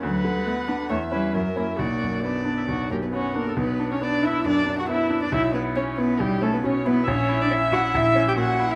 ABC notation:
X:1
M:4/4
L:1/16
Q:1/4=137
K:Bm
V:1 name="Violin"
f8 e4 e4 | d4 d6 ^A B c2 A2 | B3 c d2 e2 d3 f e3 d | e2 B2 c2 B2 G2 A B c2 B2 |
c3 d e2 f2 e3 g f3 e |]
V:2 name="Viola"
B8 c2 B2 ^A4 | F4 D3 E F2 G2 F3 A | B,3 C D2 E2 D3 F E3 D | E2 B,2 C2 B,2 G,2 A, B, C2 B,2 |
e16 |]
V:3 name="Grand piano"
D,,2 D,2 B,2 D2 E,,2 [CE]2 F,,2 [CE]2 | B,,,2 F,,2 B,2 D2 B,,,2 F,,2 B,2 D2 | B,,,2 D2 B,2 D2 F,,2 D2 B,2 D2 | B,,,2 E2 C2 E2 B,,,2 C2 B,,2 E2 |
^A,,,2 E2 C2 E2 A,,,2 C2 ^A,,2 E2 |]
V:4 name="Cello"
F,3 G, A,2 B,2 A,2 G,2 F,2 ^A,2 | ^A,4 B,6 A, B, C2 A,2 | B,3 C D2 E2 D3 F E3 D | E2 B,2 C2 B,2 G,2 A, B, C2 B,2 |
C3 D E2 F2 E3 G F3 E |]